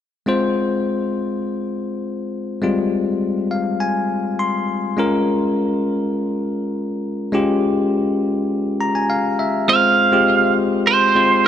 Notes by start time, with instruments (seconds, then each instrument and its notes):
0.26 tine electric piano G#3 C4 F4 C5
2.62 tine electric piano G3 G#3 C4 F4
3.51 tine electric piano F5
3.80 tine electric piano G#5
4.39 tine electric piano C6
4.97 tine electric piano G#3 C#4 F4 A#4
7.32 tine electric piano G#3 C#4 F4 G4
8.81 tine electric piano A#5
8.95 tine electric piano G#5
9.10 tine electric piano F5
9.39 tine electric piano E5
9.68 tine electric piano G#3 C4 F4 C5, lead electric guitar F5
10.12 tine electric piano G#3 C4 F4 G4
10.87 lead electric guitar C5
11.15 tine electric piano G#3 C4 F4 C5